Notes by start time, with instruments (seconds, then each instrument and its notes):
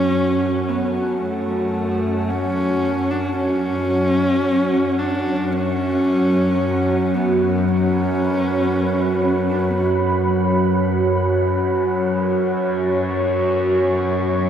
Already playing: synth drone F#2, horsehead fiddle C#4, ambient pad F#4 C#5 F#5 A5, synth texture F#5
0.68 horsehead fiddle B3
1.22 horsehead fiddle A3
2.30 horsehead fiddle C#4
3.11 horsehead fiddle D4
3.36 horsehead fiddle C#4
4.98 horsehead fiddle D4
5.52 horsehead fiddle C#4
6.54 ambient pad B5
7.14 horsehead fiddle B3
7.68 horsehead fiddle C#4
9.49 horsehead fiddle D4
9.58 horsehead fiddle C#4
9.69 horsehead fiddle B3
9.77 horsehead fiddle C#4
12.04 ambient pad F#3, synth texture C#6
13.23 ambient pad B3
13.28 ambient pad B4